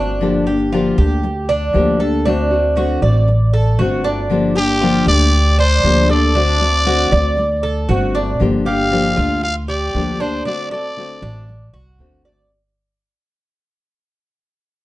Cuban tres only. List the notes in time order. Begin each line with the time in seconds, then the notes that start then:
Already playing: D4
0.47 G4
0.72 F4
0.98 G4
1.49 D4
2.00 A4
2.25 D4
2.77 F#4
3.02 D5
3.53 A4
3.79 F#4
4.04 D4
4.56 G4
4.81 F4
5.07 G4
5.58 D4
6.09 A4
6.35 D4
6.86 F#4
7.12 D5
7.63 A4
7.89 F#4
8.15 D4
8.66 G4
9.17 F4
9.68 G4
10.20 D4
10.45 D4
10.71 A4
11.22 D4
11.74 F#4
12.25 D5